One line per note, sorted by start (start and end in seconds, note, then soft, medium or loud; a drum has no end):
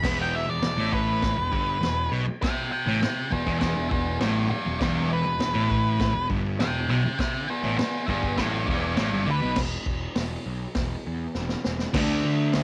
0.00 0.45 E1 medium
0.00 0.46 E2 medium
0.00 0.17 B5 loud
0.00 kick loud
0.04 snare loud
0.04 crash loud
0.04 crash medium
0.22 0.34 G5 medium
0.36 0.49 E5 medium
0.47 0.62 E1 medium
0.47 0.61 E2 medium
0.47 0.92 D5 loud
0.62 0.77 E1 medium
0.62 0.77 E2 medium
0.62 snare loud
0.62 crash medium
0.78 1.33 A1 loud
0.78 1.36 A2 loud
0.93 2.08 B4 loud
0.93 kick medium
1.22 kick loud
1.22 snare loud
1.22 crash medium
1.37 1.51 E1 medium
1.37 1.51 E2 medium
1.51 1.80 G1 medium
1.51 1.80 G2 loud
1.51 kick medium
1.80 2.09 E1 medium
1.80 2.05 E2 medium
1.80 snare loud
1.80 crash medium
2.11 2.25 B1 medium
2.11 2.26 B2 medium
2.26 muted picked electric bass stroke soft
2.26 muted distorted electric guitar stroke medium
2.43 2.70 E5 loud
2.43 2.71 G5 loud
2.43 kick loud
2.43 snare loud
2.43 crash medium
2.72 2.99 E5 medium
2.72 3.00 G5 loud
2.86 3.00 A1 loud
2.86 3.01 A2 loud
3.01 3.29 E5 medium
3.01 3.31 G5 loud
3.01 muted distorted electric guitar stroke medium
3.01 muted picked electric bass stroke soft
3.01 snare loud
3.01 crash medium
3.31 3.45 E1 medium
3.31 3.46 E2 medium
3.31 3.59 G#4 medium
3.31 3.59 E5 medium
3.31 kick medium
3.46 3.73 E1 loud
3.46 3.75 E2 loud
3.46 kick medium
3.60 3.88 G#4 medium
3.60 3.89 E5 medium
3.60 kick medium
3.60 snare loud
3.60 crash medium
3.76 3.89 E1 medium
3.76 3.90 E2 medium
3.91 4.18 E1 medium
3.91 4.14 E2 medium
3.91 4.18 G#4 medium
3.91 4.20 E5 medium
3.91 kick medium
4.21 4.48 A1 loud
4.21 4.49 A2 loud
4.21 4.48 B4 medium
4.21 4.49 D5 medium
4.21 snare loud
4.21 crash medium
4.51 4.78 B4 medium
4.51 4.79 D5 medium
4.51 muted picked electric bass stroke soft
4.51 muted distorted electric guitar stroke medium
4.66 4.79 E1 medium
4.66 4.80 E2 medium
4.81 5.22 E1 loud
4.81 5.24 E2 loud
4.81 5.09 B4 medium
4.81 5.10 D5 medium
4.81 kick loud
4.81 snare loud
4.81 crash medium
5.13 6.27 B4 loud
5.26 5.39 E1 medium
5.26 5.39 E2 medium
5.40 5.53 E1 medium
5.40 5.54 E2 medium
5.40 snare loud
5.40 crash medium
5.54 6.10 A1 loud
5.54 6.12 A2 loud
5.70 kick medium
6.00 kick loud
6.00 snare loud
6.00 crash medium
6.13 6.28 E1 medium
6.13 6.28 E2 medium
6.30 6.57 G1 loud
6.30 6.58 G2 loud
6.30 kick medium
6.59 6.86 E1 medium
6.59 6.83 E2 medium
6.59 6.89 E5 medium
6.59 6.88 G5 loud
6.59 snare loud
6.59 crash medium
6.89 7.02 B1 medium
6.89 7.02 B2 loud
6.89 7.17 E5 medium
6.89 7.18 G5 loud
7.05 muted picked electric bass stroke soft
7.05 muted distorted electric guitar stroke medium
7.19 7.46 E5 medium
7.19 7.48 G5 medium
7.19 kick loud
7.19 snare loud
7.19 crash medium
7.50 7.76 G#4 medium
7.50 7.77 E5 medium
7.63 7.76 A1 medium
7.63 7.77 A2 loud
7.78 8.05 G#4 medium
7.78 8.07 E5 loud
7.78 muted distorted electric guitar stroke medium
7.78 muted picked electric bass stroke soft
7.78 snare loud
7.78 crash medium
8.08 8.35 G1 loud
8.08 8.36 G2 loud
8.08 8.36 G#4 medium
8.08 8.37 E5 medium
8.08 kick medium
8.23 kick medium
8.37 8.65 A1 medium
8.37 8.66 A2 loud
8.37 8.65 B4 medium
8.37 8.67 D5 medium
8.37 kick medium
8.37 snare loud
8.37 crash medium
8.66 8.94 E1 medium
8.66 8.95 E2 loud
8.66 8.97 D5 medium
8.66 kick medium
8.71 8.96 B4 medium
8.96 9.10 A1 loud
8.96 9.10 A2 loud
8.96 9.25 B4 medium
8.96 9.27 D5 medium
8.96 snare loud
8.96 crash medium
9.11 9.26 G1 loud
9.11 9.25 G2 loud
9.27 9.40 D2 medium
9.27 9.40 D3 loud
9.31 9.57 B4 loud
9.42 9.56 B1 loud
9.42 9.55 B2 loud
9.56 9.76 E1 loud
9.56 kick loud
9.56 snare loud
9.56 crash loud
9.85 10.05 E1 medium
9.85 kick medium
10.15 10.35 E1 loud
10.15 snare loud
10.15 open hi-hat medium
10.46 10.65 B1 loud
10.75 10.95 E1 medium
10.75 kick loud
10.75 snare loud
10.75 open hi-hat medium
11.07 11.26 E2 medium
11.34 11.54 E1 loud
11.34 snare medium
11.49 snare medium
11.64 11.85 E1 medium
11.64 snare loud
11.79 snare loud
11.94 12.19 D2 loud
11.94 12.63 D3 medium
11.94 12.63 A3 loud
11.94 kick loud
11.94 snare loud
11.94 crash loud
11.99 12.63 D4 loud
12.25 12.49 D3 medium
12.53 12.63 D2 loud
12.53 snare loud
12.53 open hi-hat medium